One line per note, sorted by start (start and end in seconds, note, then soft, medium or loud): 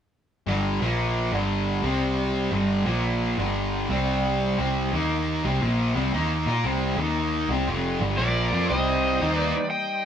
0.46 0.78 G1 medium
0.46 0.80 G2 medium
0.46 0.80 D3 medium
0.46 0.80 G3 medium
0.81 1.29 A#1 medium
0.81 1.31 A#2 medium
0.81 1.32 F3 medium
0.81 1.32 A#3 medium
1.32 1.80 G1 medium
1.32 1.83 G2 medium
1.32 1.82 D3 medium
1.32 1.82 G3 medium
1.82 2.49 C2 medium
1.82 2.52 C3 medium
1.82 2.51 G3 medium
1.82 2.52 C4 medium
2.52 2.84 G1 medium
2.52 2.85 G2 medium
2.52 2.84 D3 medium
2.52 2.85 G3 medium
2.85 3.34 A#1 medium
2.85 3.36 A#2 medium
2.85 3.36 F3 medium
2.85 3.37 A#3 medium
3.38 3.86 G1 medium
3.38 3.88 G2 medium
3.38 3.88 D3 medium
3.38 3.89 G3 medium
3.89 4.55 C2 medium
3.89 4.56 C3 medium
3.89 4.57 G3 medium
3.89 4.57 C4 medium
4.58 4.90 C2 medium
4.58 4.91 C3 medium
4.58 4.91 G3 medium
4.58 4.91 C4 medium
4.92 5.41 D#2 medium
4.92 5.43 D#3 medium
4.92 5.43 A#3 medium
4.92 5.43 D#4 medium
5.44 5.61 C2 medium
5.44 5.60 C3 medium
5.44 5.61 G3 medium
5.44 5.62 C4 loud
5.61 5.93 A#1 medium
5.61 5.94 A#2 medium
5.61 5.94 F3 medium
5.61 5.95 A#3 medium
5.95 6.12 C2 medium
5.95 6.12 C3 medium
5.95 6.13 G3 medium
5.95 6.13 C4 medium
6.13 6.45 D#2 medium
6.13 6.46 D#3 medium
6.13 6.45 A#3 medium
6.13 6.46 D#4 medium
6.46 6.63 A#2 medium
6.46 6.64 A#3 medium
6.46 6.64 F4 medium
6.46 6.64 A#4 medium
6.64 6.96 C2 medium
6.64 6.98 C3 medium
6.64 6.99 G3 medium
6.64 7.00 C4 medium
6.97 7.45 D#2 medium
6.97 7.49 D#3 medium
6.97 7.49 A#3 medium
6.97 7.49 D#4 medium
7.49 7.65 C2 medium
7.49 7.67 C3 medium
7.49 7.67 G3 medium
7.49 7.67 C4 medium
7.67 7.99 F1 medium
7.67 8.00 F2 medium
7.67 8.00 C3 medium
7.67 8.01 F3 medium
8.01 8.17 G1 medium
8.01 8.18 G2 medium
8.01 8.18 D3 medium
8.01 8.18 G3 medium
8.17 8.50 A#1 medium
8.17 8.51 A#2 medium
8.17 8.50 F3 medium
8.17 8.52 A#3 medium
8.17 8.66 A#4 medium
8.17 8.69 D5 medium
8.52 8.69 F2 medium
8.52 8.69 F3 medium
8.52 8.69 C4 medium
8.52 8.70 F4 medium
8.68 9.18 C2 medium
8.68 9.20 C3 medium
8.68 9.21 G3 medium
8.68 10.05 G3 medium
8.68 9.21 C4 medium
8.68 10.05 D#4 medium
8.68 9.34 C5 medium
8.68 10.05 C5 medium
8.68 9.36 D#5 medium
9.21 9.52 D#2 medium
9.21 9.54 D#3 medium
9.21 9.54 A#3 medium
9.21 9.54 D#4 loud
9.34 9.67 B4 medium
9.34 9.68 D5 medium
9.70 10.05 D#5 medium
9.70 10.05 G5 medium